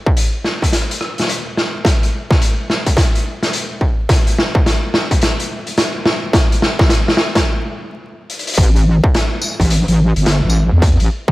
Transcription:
0.06 kick loud
0.17 closed hi-hat medium
0.44 snare soft
0.62 kick medium
0.62 cross-stick soft
0.62 closed hi-hat medium
0.73 snare medium
0.73 closed hi-hat medium
0.91 closed hi-hat medium
1.01 cross-stick medium
1.18 snare soft
1.18 closed hi-hat medium
1.22 snare soft
1.25 snare soft
1.27 snare soft
1.27 closed hi-hat medium
1.57 snare medium
1.85 kick loud
1.85 snare medium
1.85 closed hi-hat medium
2.03 closed hi-hat soft
2.31 kick loud
2.31 snare medium
2.42 closed hi-hat medium
2.70 snare medium
2.86 kick medium
2.86 closed hi-hat medium
2.97 kick loud
2.97 snare medium
2.97 closed hi-hat medium
3.15 closed hi-hat medium
3.43 snare medium
3.43 closed hi-hat medium
3.53 closed hi-hat medium
3.81 kick medium
4.09 kick loud
4.09 snare medium
4.09 closed hi-hat medium
4.27 closed hi-hat medium
4.38 snare medium
4.55 kick loud
4.66 snare medium
4.66 closed hi-hat medium
4.94 snare medium
5.11 kick medium
5.11 closed hi-hat medium
5.21 snare medium
5.21 closed hi-hat medium
5.40 closed hi-hat medium
5.67 closed hi-hat medium
5.77 snare medium
5.77 closed hi-hat medium
6.06 snare medium
6.33 kick loud
6.33 snare loud
6.33 closed hi-hat loud
6.52 closed hi-hat medium
6.62 snare medium
6.79 kick loud
6.79 snare medium
6.89 snare loud
6.89 closed hi-hat medium
7.08 snare medium
7.17 snare loud
7.35 kick medium
7.35 snare medium
7.35 closed hi-hat medium
8.30 closed hi-hat medium
8.39 closed hi-hat medium
8.47 closed hi-hat medium
8.54 closed hi-hat medium
8.58 9.01 A1 medium
8.58 kick loud
8.58 closed hi-hat medium
8.76 closed hi-hat medium
9.04 kick loud
9.14 snare loud
9.14 closed hi-hat medium
9.42 tambourine medium
9.60 9.85 A1 loud
9.60 kick medium
9.60 closed hi-hat medium
9.70 closed hi-hat loud
9.88 10.13 A1 loud
9.88 closed hi-hat medium
10.16 10.41 G1 loud
10.16 closed hi-hat medium
10.26 snare loud
10.26 closed hi-hat medium
10.44 10.69 A1 loud
10.50 tambourine medium
10.72 10.97 E2 medium
10.82 kick loud
10.82 closed hi-hat medium
11.00 11.09 A1 loud
11.00 closed hi-hat medium
11.28 kick loud

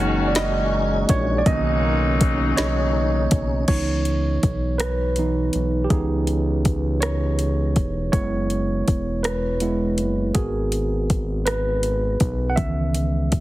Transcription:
0.00 1.06 F#1 loud
0.00 1.05 D#3 medium
0.00 0.31 E3 medium
0.00 0.32 G#3 medium
0.00 1.44 G#3 medium
0.00 0.32 A#3 soft
0.00 1.05 C#4 medium
0.00 3.64 C#4 medium
0.00 0.32 D#4 medium
0.00 1.42 D#4 medium
0.00 1.05 F#4 medium
0.00 1.44 F#4 medium
0.28 0.35 D5 medium
0.35 1.12 D#5 loud
0.35 snare loud
0.35 closed hi-hat medium
1.09 1.43 A#1 medium
1.09 1.40 C#5 loud
1.09 kick medium
1.09 closed hi-hat medium
1.38 1.46 D5 medium
1.45 2.54 B1 loud
1.45 3.28 A#2 medium
1.45 3.66 C#3 medium
1.45 2.54 D#3 medium
1.45 3.28 F#3 medium
1.45 2.54 A#3 soft
1.45 2.54 C#4 medium
1.45 3.66 D#4 medium
1.45 3.27 D#4 medium
1.45 2.56 D#5 loud
1.45 kick loud
1.45 closed hi-hat medium
2.21 kick medium
2.21 closed hi-hat medium
2.57 3.28 B1 medium
2.57 3.27 C#5 loud
2.57 3.37 D#5 medium
2.57 snare loud
2.57 closed hi-hat medium
3.31 3.65 B1 medium
3.31 kick medium
3.31 closed hi-hat medium
3.68 4.39 C#2 loud
3.68 4.18 E3 soft
3.68 4.18 B3 soft
3.68 4.18 D#4 soft
3.68 4.83 C#5 medium
3.68 kick medium
3.68 closed hi-hat medium
3.68 crash medium
4.05 closed hi-hat soft
4.43 5.50 B1 medium
4.43 kick medium
4.43 closed hi-hat soft
4.78 5.79 B4 medium
4.78 cross-stick loud
4.78 closed hi-hat medium
5.16 5.51 E3 soft
5.16 5.51 B3 soft
5.16 5.51 D#4 soft
5.16 closed hi-hat soft
5.53 5.88 B1 medium
5.53 closed hi-hat soft
5.84 5.91 G4 medium
5.90 7.78 C#2 loud
5.90 8.09 E3 soft
5.90 8.10 B3 soft
5.90 8.10 D#4 medium
5.90 6.70 G#4 medium
5.90 kick loud
5.90 closed hi-hat medium
6.27 closed hi-hat medium
6.65 kick medium
6.65 closed hi-hat soft
7.00 7.71 C#5 medium
7.00 cross-stick loud
7.00 closed hi-hat medium
7.39 closed hi-hat soft
7.76 8.10 E1 medium
7.76 kick medium
7.76 closed hi-hat soft
8.12 8.83 F#1 medium
8.12 9.20 G#3 soft
8.12 9.20 B3 soft
8.12 9.21 E4 medium
8.12 9.27 C#5 medium
8.12 kick loud
8.12 closed hi-hat medium
8.50 closed hi-hat soft
8.88 10.01 E1 medium
8.88 kick medium
8.88 closed hi-hat soft
9.23 10.38 B4 medium
9.23 cross-stick loud
9.23 closed hi-hat medium
9.60 9.95 G#3 soft
9.60 9.95 B3 soft
9.60 9.95 E4 soft
9.60 closed hi-hat soft
9.98 10.32 F#1 medium
9.98 closed hi-hat soft
10.34 12.17 G#1 loud
10.34 12.54 B3 soft
10.34 12.54 F#4 medium
10.34 11.14 G#4 medium
10.34 12.53 A#4 medium
10.34 kick medium
10.34 closed hi-hat medium
10.72 closed hi-hat medium
11.10 kick medium
11.10 closed hi-hat soft
11.46 12.53 B4 medium
11.46 cross-stick loud
11.46 closed hi-hat medium
11.83 closed hi-hat soft
12.20 12.60 B1 medium
12.20 kick medium
12.20 closed hi-hat soft
12.50 12.57 F#5 medium
12.56 13.34 C#2 medium
12.56 13.40 D#3 medium
12.56 13.40 E3 soft
12.56 13.40 B3 soft
12.56 13.40 E5 medium
12.56 kick loud
12.56 closed hi-hat medium
12.95 closed hi-hat medium
13.32 13.40 B1 medium
13.32 kick medium
13.32 closed hi-hat soft

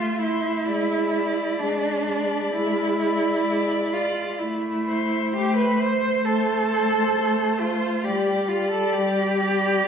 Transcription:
0.00 0.54 A3 medium
0.00 0.20 F4 loud
0.00 0.16 E5 medium
0.00 0.17 C6 medium
0.17 1.60 E4 loud
0.17 0.64 E5 medium
0.17 0.64 C6 medium
0.65 1.48 G#3 medium
0.65 1.11 D5 medium
0.65 1.11 B5 medium
1.12 2.04 D5 medium
1.12 2.04 B5 medium
1.58 2.42 G#3 medium
1.58 2.53 D4 loud
2.06 2.98 D5 medium
2.06 2.98 B5 medium
2.53 3.35 G#3 medium
2.53 3.94 E4 loud
3.00 3.91 D5 medium
3.00 3.91 B5 medium
3.46 4.28 G#3 medium
3.92 4.40 F4 medium
3.92 4.39 D5 medium
3.92 4.38 B5 medium
4.39 5.22 A3 medium
4.39 5.35 E4 medium
4.86 5.77 C5 medium
4.86 5.77 C6 medium
5.33 6.14 A3 medium
5.33 5.56 G4 loud
5.56 5.80 B4 loud
5.78 6.68 C5 medium
5.78 6.26 C5 loud
5.78 6.69 C6 medium
6.25 7.05 A3 medium
6.25 7.62 A4 loud
6.71 7.58 C5 medium
6.71 7.58 C6 medium
7.17 7.94 A3 medium
7.59 8.06 F4 medium
7.59 8.03 C5 medium
7.59 8.03 C6 medium
8.04 8.84 G3 medium
8.04 8.50 G4 medium
8.04 8.47 D5 medium
8.04 8.48 B5 medium
8.47 8.70 F4 loud
8.47 9.36 D5 medium
8.47 9.36 B5 medium
8.71 8.94 A4 medium
8.93 9.73 G3 medium
8.93 9.88 G4 loud
9.37 9.88 D5 medium
9.37 9.88 B5 medium
9.84 9.88 G3 medium

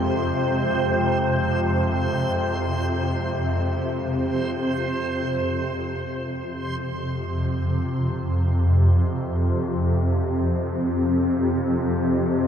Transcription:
0.00 5.34 F2 medium
0.00 5.33 C3 medium
0.00 5.34 G#3 medium
0.00 5.34 F4 medium
0.00 5.35 C5 medium
0.00 5.36 C5 medium
0.00 5.35 G5 medium
5.34 12.47 F2 medium
5.34 12.47 C3 medium

